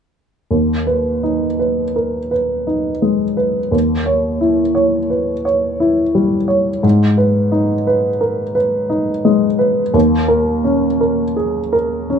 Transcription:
0.51 D#2
0.87 B4
1.23 D#4
1.59 B4
1.96 A#4
2.31 B4
2.67 D#4
3.02 G#3
3.37 B4
3.72 D#2
4.06 C#5
4.41 E4
4.75 C#5
5.10 B4
5.45 C#5
5.80 E4
6.15 G3
6.48 C#5
6.83 G#2
7.17 B4
7.52 D#4
7.87 B4
8.21 A#4
8.55 B4
8.90 D#4
9.25 G#3
9.59 B4
9.94 D#2
10.28 A#4
10.64 C#4
11.01 A#4
11.37 G#4
11.73 A#4
12.10 C#4

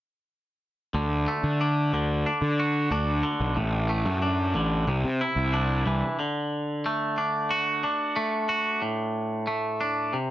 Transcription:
0.94 D2 D3
1.28 A3
1.43 D3
1.61 D4
1.92 D2 D3
2.26 D4
2.41 D3
2.59 F#4
2.91 D2 D4
3.23 D3
3.40 B1
3.56 A1 A2
3.90 A3
4.05 F#2
4.22 D4
4.54 A1 D3
4.87 C2 C3
5.04 C3
5.21 E4
5.36 C2
5.53 D4
5.86 C2 E3
6.19 D3
6.86 A3
7.18 D4
7.50 F#4
7.84 D4
8.16 A3
8.49 F#4
8.82 A2
9.47 A3
9.81 D4
10.13 C3

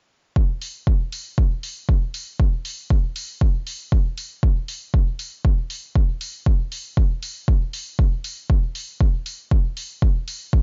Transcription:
0.36 kick
0.62 open hi-hat
0.87 kick
1.12 open hi-hat
1.38 kick
1.63 open hi-hat
1.89 kick
2.14 open hi-hat
2.40 kick
2.65 open hi-hat
2.90 kick
3.16 open hi-hat
3.41 kick
3.67 open hi-hat
3.92 kick
4.18 open hi-hat
4.43 kick
4.68 open hi-hat
4.94 kick
5.19 open hi-hat
5.45 kick
5.70 open hi-hat
5.96 kick
6.21 open hi-hat
6.46 kick
6.72 open hi-hat
6.97 kick
7.23 open hi-hat
7.48 kick
7.73 open hi-hat
7.99 kick
8.24 open hi-hat
8.50 kick
8.75 open hi-hat
9.01 kick
9.26 open hi-hat
9.51 kick
9.77 open hi-hat
10.02 kick
10.28 open hi-hat
10.53 kick

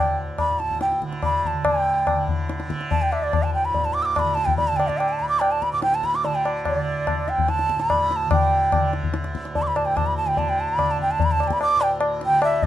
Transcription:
Already playing: D2 A2 D3 G5
0.38 B5, tabla na, tabla ge
0.50 A2
0.59 A5, tabla te
0.70 tabla ge
0.81 G5, tabla te
0.92 tabla te
1.02 D3, tabla ke
1.13 tabla te
1.23 B5, tabla na, tabla ge
1.44 A5, tabla ge
1.53 D3
1.65 A2 G5, tabla na, tabla ge
2.07 tabla na, tabla ge
2.16 D3
2.28 tabla ge
2.49 tabla te
2.60 tabla te
2.67 D3, tabla ke
2.81 tabla te
2.91 A5, tabla tin, tabla ge
3.02 G5
3.12 E5, tabla na
3.17 D2
3.23 D5
3.33 tabla na, tabla ge
3.43 A5
3.54 G5
3.65 B5
3.70 A2
3.74 tabla tin, tabla ge
3.85 A5
3.94 D6
4.02 D6 E6
4.15 D6, tabla na, tabla ge
4.19 D3 B5
4.35 A5, tabla te
4.45 G5, tabla ge
4.57 B5, tabla tin, tabla ge
4.68 D3 A5
4.76 G5, tabla na
4.88 D5, tabla ke
4.98 G5, tabla na
5.09 A5
5.20 D2 B5
5.29 D6
5.40 G5, tabla na
5.51 A5
5.62 B5, tabla ke
5.72 A2 D6
5.82 G5, tabla te
5.93 A5, tabla te
6.03 B5, tabla ke
6.14 D6, tabla te
6.24 D3 A5, tabla tin
6.35 G5
6.45 tabla na
6.65 D5, tabla na, tabla ge
6.75 D3
7.07 tabla na, tabla ge
7.25 D2, tabla te
7.29 G5
7.38 tabla ge
7.48 A5, tabla te
7.59 tabla te
7.69 tabla ke
7.76 A2, tabla te
7.80 B5
7.90 tabla na, tabla ge
8.11 B5, tabla te
8.16 A5
8.26 D3
8.31 G5, tabla na, tabla ge
8.72 D3, tabla na, tabla ge
8.93 tabla te
9.04 tabla ge
9.14 tabla te
9.24 D2, tabla te
9.35 tabla ke
9.45 tabla te
9.55 A5, tabla tin, tabla ge
9.62 D6
9.67 B5
9.76 A2 A5, tabla na
9.86 G5
9.97 A5, tabla na, tabla ge
10.06 B5
10.17 A5
10.25 D3 G5
10.37 A5, tabla tin, tabla ge
10.49 G5
10.60 A5
10.69 B5
10.76 D3, tabla na, tabla ge
10.91 A5
10.99 G5, tabla ge
11.11 A5
11.20 B5, tabla tin, tabla ge
11.26 D2
11.31 A5
11.40 A5, tabla na
11.48 G5, tabla ke
11.53 B5
11.61 D6, tabla na
11.76 A2
11.81 G5, tabla na
12.01 tabla na
12.21 tabla te
12.26 D3 G5
12.42 E5, tabla na
12.62 tabla tin, tabla ge

